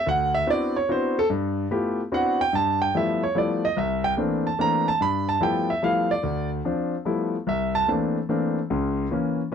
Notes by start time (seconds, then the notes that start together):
0.07 D2 F#5
0.34 E5
0.47 B3 C4 D4 E4 F#4 D5
0.76 C#5
0.89 B3 C4 D4 E4 F#4 C5
1.19 A4
1.30 G2
1.71 A3 B3 E4 F4 G4
2.12 B3 C4 D4 E4 F#4 F#5
2.41 G5
2.53 G2 A5
2.82 G5
2.94 F3 G3 A3 B3 E4 E5
3.23 C#5
3.35 F3 G3 A3 B3 E4 D5
3.65 D#5
3.77 C2 E5
4.04 G5
4.17 E3 A3 A#3 C4 D4
4.47 A5
4.59 E3 A3 A#3 C4 D4 A#5
4.88 A5
5.01 G2 B5
5.29 A5
5.41 F3 G3 A3 B3 E4 G5
5.70 E5
5.82 F3 G3 A3 B3 E4 F5
6.11 D5
6.23 D2
6.65 F3 C4 D4
7.05 F3 G3 A3 B3 E4
7.47 C2 E5
7.75 A5
7.88 E3 A3 A#3 C4 D4
8.29 E3 A3 A#3 C4 D4
8.70 C#2 C#3
9.11 E3 A#3 C#4
9.52 E3